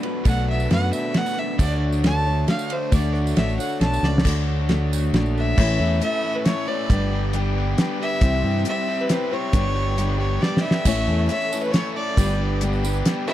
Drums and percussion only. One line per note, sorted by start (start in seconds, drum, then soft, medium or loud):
0.03 ride medium
0.25 kick loud
0.25 ride medium
0.25 tambourine medium
0.60 tambourine medium
0.71 snare medium
0.71 ride medium
0.93 tambourine medium
1.14 snare medium
1.14 ride medium
1.26 tambourine medium
1.59 kick loud
1.59 ride medium
1.59 tambourine medium
1.93 tambourine medium
2.04 snare loud
2.04 ride medium
2.48 snare medium
2.48 ride medium
2.59 tambourine medium
2.70 ride medium
2.70 tambourine soft
2.92 kick loud
2.92 ride medium
2.92 tambourine loud
3.04 tambourine soft
3.15 tambourine soft
3.27 tambourine medium
3.37 snare medium
3.37 ride medium
3.49 tambourine soft
3.60 tambourine medium
3.81 snare medium
3.81 ride medium
3.94 tambourine medium
4.04 snare medium
4.04 tambourine soft
4.18 snare medium
4.25 kick loud
4.25 crash loud
4.25 tambourine medium
4.69 snare medium
4.69 ride medium
4.93 tambourine loud
5.14 snare medium
5.14 ride medium
5.26 tambourine soft
5.38 tambourine soft
5.58 kick loud
5.58 crash loud
6.02 closed hi-hat medium
6.45 snare medium
6.45 closed hi-hat medium
6.90 kick loud
6.90 closed hi-hat medium
7.33 closed hi-hat medium
7.78 snare medium
7.78 closed hi-hat medium
8.21 kick loud
8.21 closed hi-hat medium
8.65 closed hi-hat medium
9.09 snare medium
9.09 closed hi-hat medium
9.53 kick loud
9.53 closed hi-hat medium
9.98 closed hi-hat medium
10.43 snare medium
10.57 snare medium
10.71 snare loud
10.85 kick loud
10.85 tambourine loud
10.85 crash loud
11.29 closed hi-hat medium
11.29 tambourine soft
11.41 tambourine soft
11.53 tambourine loud
11.64 tambourine soft
11.74 snare medium
11.74 closed hi-hat medium
12.17 kick loud
12.17 closed hi-hat medium
12.17 tambourine loud
12.61 closed hi-hat medium
12.61 tambourine soft
12.73 tambourine soft
12.85 tambourine loud
12.95 tambourine soft
13.05 snare medium
13.05 closed hi-hat medium